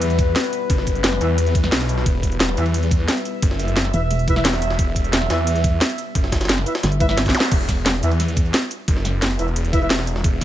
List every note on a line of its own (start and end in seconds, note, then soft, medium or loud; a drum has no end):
0.00 0.34 E2 medium
0.00 7.48 G3 medium
0.00 7.48 B3 medium
0.00 7.48 E4 medium
0.00 2.04 B4 medium
0.00 closed hi-hat medium
0.00 ride medium
0.10 closed hi-hat soft
0.19 kick loud
0.19 closed hi-hat medium
0.19 ride medium
0.19 cabasa medium
0.36 snare loud
0.36 closed hi-hat medium
0.36 ride medium
0.44 closed hi-hat soft
0.44 cabasa soft
0.53 closed hi-hat medium
0.53 ride medium
0.53 cabasa medium
0.70 1.20 F#1 loud
0.70 kick loud
0.70 closed hi-hat medium
0.70 ride medium
0.78 snare soft
0.87 kick medium
0.87 closed hi-hat medium
0.87 ride medium
0.87 cabasa medium
0.95 closed hi-hat soft
1.04 snare loud
1.04 closed hi-hat medium
1.04 ride medium
1.12 snare soft
1.12 ride soft
1.21 1.71 E2 loud
1.21 1.29 E4 medium
1.21 1.29 B4 medium
1.21 1.29 E5 medium
1.21 closed hi-hat medium
1.21 ride medium
1.21 cabasa medium
1.38 closed hi-hat medium
1.38 ride medium
1.47 closed hi-hat soft
1.55 kick loud
1.55 closed hi-hat medium
1.55 ride medium
1.55 cabasa medium
1.64 snare medium
1.64 cabasa soft
1.72 2.05 B1 loud
1.72 snare loud
1.72 closed hi-hat medium
1.72 ride medium
1.81 snare soft
1.81 closed hi-hat soft
1.81 cabasa soft
1.89 closed hi-hat medium
1.89 ride medium
1.89 cabasa medium
1.98 snare medium
2.06 2.56 E1 medium
2.06 7.49 E5 loud
2.06 kick loud
2.06 closed hi-hat medium
2.06 ride medium
2.23 kick medium
2.23 closed hi-hat medium
2.23 ride medium
2.23 cabasa medium
2.32 closed hi-hat soft
2.40 snare loud
2.40 closed hi-hat medium
2.40 ride medium
2.49 snare soft
2.57 3.07 E2 loud
2.57 2.65 E4 medium
2.57 2.65 B4 medium
2.57 2.65 E5 medium
2.57 closed hi-hat medium
2.57 ride medium
2.57 cabasa medium
2.66 ride soft
2.74 closed hi-hat medium
2.74 ride medium
2.83 closed hi-hat soft
2.91 kick loud
2.91 closed hi-hat medium
2.91 ride medium
2.91 cabasa medium
3.08 snare loud
3.08 closed hi-hat medium
3.08 ride medium
3.17 closed hi-hat soft
3.17 cabasa soft
3.25 closed hi-hat medium
3.25 ride medium
3.25 cabasa medium
3.42 3.92 F#1 loud
3.42 kick loud
3.42 closed hi-hat medium
3.42 ride medium
3.51 snare soft
3.59 closed hi-hat medium
3.59 ride medium
3.59 cabasa medium
3.68 closed hi-hat soft
3.77 snare loud
3.77 closed hi-hat loud
3.77 ride medium
3.85 snare soft
3.85 ride soft
3.94 4.43 E1 loud
3.94 4.02 E4 medium
3.94 4.02 B4 medium
3.94 4.02 E5 medium
3.94 closed hi-hat medium
3.94 ride medium
3.94 cabasa medium
4.11 closed hi-hat medium
4.11 ride medium
4.19 closed hi-hat soft
4.28 4.34 E4 loud
4.28 4.34 B4 medium
4.28 4.34 E5 loud
4.28 kick loud
4.28 closed hi-hat medium
4.28 ride medium
4.28 cabasa medium
4.36 4.44 E4 loud
4.36 4.44 B4 medium
4.36 4.44 E5 loud
4.36 snare medium
4.45 4.77 E1 loud
4.45 snare loud
4.45 closed hi-hat medium
4.45 ride medium
4.53 snare soft
4.53 closed hi-hat soft
4.53 cabasa soft
4.62 closed hi-hat medium
4.62 ride medium
4.62 cabasa medium
4.70 snare medium
4.79 5.29 E1 loud
4.79 kick loud
4.79 closed hi-hat loud
4.79 ride medium
4.96 kick medium
4.96 closed hi-hat medium
4.96 ride medium
4.96 cabasa medium
5.04 closed hi-hat soft
5.13 snare loud
5.13 closed hi-hat loud
5.13 ride medium
5.22 snare soft
5.30 5.80 E2 loud
5.30 5.38 E4 medium
5.30 5.38 B4 medium
5.30 5.38 E5 medium
5.30 snare loud
5.30 closed hi-hat medium
5.30 ride medium
5.30 cabasa medium
5.47 closed hi-hat medium
5.47 ride medium
5.56 closed hi-hat soft
5.64 kick loud
5.64 closed hi-hat medium
5.64 ride medium
5.64 cabasa medium
5.81 snare loud
5.81 closed hi-hat medium
5.81 ride medium
5.90 closed hi-hat soft
5.90 cabasa soft
5.98 closed hi-hat medium
5.98 ride medium
5.98 cabasa medium
6.15 6.65 F#1 loud
6.15 kick loud
6.15 closed hi-hat loud
6.15 ride medium
6.24 snare soft
6.32 kick medium
6.32 snare loud
6.32 closed hi-hat medium
6.32 ride medium
6.32 cabasa medium
6.41 snare medium
6.41 closed hi-hat soft
6.41 ride medium
6.45 snare medium
6.45 ride medium
6.49 snare loud
6.49 closed hi-hat loud
6.49 ride medium
6.58 snare soft
6.58 ride soft
6.66 6.74 E4 medium
6.66 6.74 B4 medium
6.66 6.74 E5 medium
6.66 closed hi-hat medium
6.66 ride medium
6.66 cabasa medium
6.75 snare loud
6.75 ride medium
6.83 7.33 G1 loud
6.83 snare loud
6.83 closed hi-hat loud
6.83 ride medium
6.92 closed hi-hat soft
7.00 7.07 E4 loud
7.00 7.07 B4 medium
7.00 7.07 E5 loud
7.00 kick loud
7.00 closed hi-hat medium
7.00 ride medium
7.00 cabasa medium
7.09 7.17 E4 medium
7.09 7.17 B4 medium
7.09 7.17 E5 loud
7.09 snare medium
7.09 cabasa soft
7.17 snare medium
7.17 snare loud
7.17 closed hi-hat loud
7.17 ride medium
7.26 kick medium
7.26 snare soft
7.26 closed hi-hat soft
7.26 cabasa soft
7.29 snare medium
7.35 snare loud
7.35 closed hi-hat medium
7.35 ride medium
7.35 zap medium
7.35 cabasa medium
7.40 snare loud
7.43 snare medium
7.52 8.01 E1 medium
7.52 kick loud
7.52 closed hi-hat loud
7.52 crash loud
7.52 ride medium
7.69 kick medium
7.69 snare soft
7.69 closed hi-hat medium
7.69 ride medium
7.69 cabasa medium
7.86 snare loud
7.86 closed hi-hat loud
7.86 ride medium
8.03 8.53 E2 loud
8.03 8.11 E4 medium
8.03 8.11 B4 medium
8.03 8.11 E5 medium
8.03 closed hi-hat medium
8.03 ride medium
8.03 cabasa medium
8.11 ride soft
8.11 cabasa soft
8.20 snare soft
8.20 closed hi-hat loud
8.20 ride medium
8.28 closed hi-hat soft
8.37 kick loud
8.37 closed hi-hat medium
8.37 ride medium
8.37 cabasa medium
8.45 cabasa soft
8.54 snare loud
8.54 closed hi-hat loud
8.54 ride medium
8.71 closed hi-hat medium
8.71 ride medium
8.71 cabasa medium
8.88 9.38 F#1 loud
8.88 kick loud
8.88 closed hi-hat loud
8.88 ride medium
8.97 snare soft
9.05 snare soft
9.05 closed hi-hat medium
9.05 ride medium
9.05 cabasa medium
9.22 snare loud
9.22 closed hi-hat loud
9.22 ride medium
9.31 ride soft
9.39 9.89 E1 loud
9.39 9.47 E4 medium
9.39 9.47 B4 medium
9.39 9.47 E5 medium
9.39 closed hi-hat medium
9.39 ride medium
9.39 cabasa medium
9.48 cabasa soft
9.56 closed hi-hat loud
9.56 ride medium
9.65 closed hi-hat soft
9.73 9.80 E4 loud
9.73 9.80 B4 medium
9.73 9.80 E5 loud
9.73 kick loud
9.73 closed hi-hat medium
9.73 ride medium
9.73 cabasa medium
9.82 9.90 E4 loud
9.82 9.90 B4 medium
9.82 9.90 E5 loud
9.82 cabasa soft
9.90 10.23 E1 loud
9.90 snare loud
9.90 closed hi-hat medium
9.90 ride medium
9.99 snare soft
10.07 closed hi-hat medium
10.07 ride medium
10.07 cabasa medium
10.16 snare medium
10.24 10.44 E1 loud
10.24 kick loud
10.24 closed hi-hat medium
10.24 ride medium